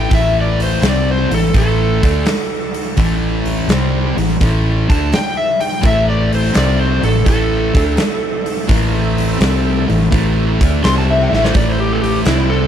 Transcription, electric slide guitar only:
Already playing: G5
0.14 E5
0.41 D5
0.63 C5
0.89 D5
1.11 C5
1.34 A4
1.58 A4
4.90 A5
5.14 G5
5.37 E5
5.60 G5
5.86 E5
6.09 D5
6.35 C5
6.57 D5
6.80 C5
7.04 A4
7.29 A4
10.84 C6
10.98 A5
11.10 E5
11.23 G5
11.35 E5
11.44 C5
11.56 D5
11.69 C5
11.80 G4
11.93 A4
12.02 G4
12.26 E4
12.50 A4

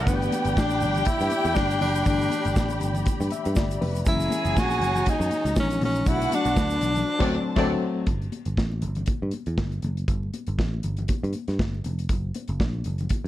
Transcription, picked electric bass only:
0.07 G1
0.45 G1
0.57 A1
0.81 G1
1.07 muted picked electric bass stroke
1.21 G2
1.45 E2
1.57 G1
1.81 F#1
2.06 G1
2.46 G1
2.56 A1
2.82 G1
3.07 muted picked electric bass stroke
3.21 G2
3.46 G2
3.57 G1
3.82 F1
4.07 F#1
4.45 F#1
4.57 A#1
4.81 F#1
5.07 muted picked electric bass stroke
5.20 F#2
5.45 C#2
5.57 A#1
5.81 A#1
6.06 B1
6.46 B1
6.56 D2
6.81 B1
7.20 D2
7.56 D2
8.07 G1
8.46 G1
8.58 A1
8.82 G1
9.08 muted picked electric bass stroke
9.22 G2
9.47 E2
9.58 G1
9.83 F#1
10.08 G1
10.48 G1
10.58 A1
10.84 G1
11.09 muted picked electric bass stroke
11.23 G2
11.48 G2
11.59 G1
11.84 F1
12.10 F#1
12.49 F#1
12.60 A#1
12.86 F#1
13.10 muted picked electric bass stroke
13.24 F#2

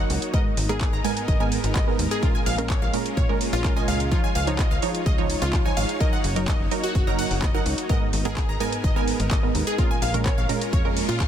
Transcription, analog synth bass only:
0.10 C#2
0.57 G#1
0.93 G#1
1.28 G#1
1.64 G#1
1.99 D#2
2.46 A#1
2.82 A#1
3.17 A#2
3.53 A#1
3.88 C#2
4.35 C#2
4.71 C#2
5.06 C#2
5.42 C#2
5.77 G#1
6.24 F#1
6.60 F#1
6.95 F#1
7.31 F#1
7.66 C#2
8.13 G#1
8.49 G#1
8.84 G#1
9.20 G#1
9.55 D#2
10.02 A#1
10.38 A#1
10.73 F2
11.09 A#2

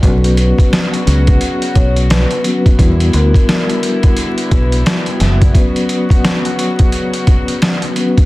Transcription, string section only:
0.03 C#3 F#3 B3 F#4
2.78 D3 G3 E4
5.53 C#3 F#3 F#4

